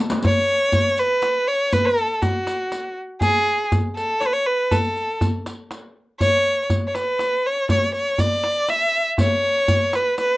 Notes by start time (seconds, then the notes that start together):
0.10 riq, tombak ka
0.23 C#5, riq, tombak dum
0.48 riq, tombak ka
0.72 riq, tombak dum
0.98 B4, riq
1.22 riq, tombak tek
1.48 C#5
1.72 B4, riq, tombak dum
1.85 A4
1.98 riq, tombak ka
2.22 F#4, riq, tombak dum
2.47 riq, tombak tek
2.72 riq, tombak tek
3.21 G#4, riq, tombak dum
3.46 riq, tombak ka
3.72 riq, tombak dum
3.96 A4, riq
4.20 C#5, riq, tombak tek
4.26 B4
4.33 C#5
4.46 B4
4.71 A4, riq, tombak dum
4.84 riq, tombak ka
4.96 riq, tombak ka
5.21 riq, tombak dum
5.46 riq, tombak tek
5.71 riq, tombak tek
6.20 C#5, riq, tombak dum
6.46 riq, tombak ka
6.70 riq, tombak dum
6.87 C#5
6.95 B4, riq, tombak tek
7.19 riq, tombak tek
7.46 C#5
7.69 C#5, riq, tombak dum
7.94 C#5, riq, tombak ka
8.18 D5, riq, tombak dum
8.44 tombak tek
8.69 E5, riq, tombak tek
9.18 C#5, riq, tombak dum
9.43 riq, tombak ka
9.68 riq, tombak dum
9.93 B4, riq, tombak tek
10.18 B4, riq, tombak tek